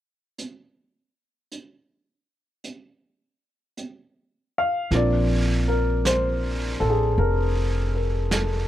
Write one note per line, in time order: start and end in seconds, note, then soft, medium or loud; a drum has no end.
0.38 closed hi-hat soft
1.52 closed hi-hat soft
2.64 closed hi-hat soft
3.77 closed hi-hat soft
4.58 4.91 F5 medium
4.91 6.76 A#1 medium
4.91 8.68 F3 soft
4.91 8.68 A#3 soft
4.91 8.68 C4 soft
4.91 5.71 D5 medium
4.91 brush sweep soft
4.91 snare soft
4.96 8.68 D4 soft
5.68 6.03 A#4 medium
6.05 6.85 C5 medium
6.05 brush sweep soft
6.05 snare soft
6.05 hi-hat pedal soft
6.80 7.16 A1 medium
6.80 7.19 A4 medium
6.90 6.92 G#4 soft
7.18 8.68 F1 medium
7.18 7.93 A#4 medium
7.18 brush sweep soft
7.95 8.53 A#4 soft
8.31 8.68 A4 soft
8.31 brush sweep soft
8.31 snare soft
8.31 hi-hat pedal soft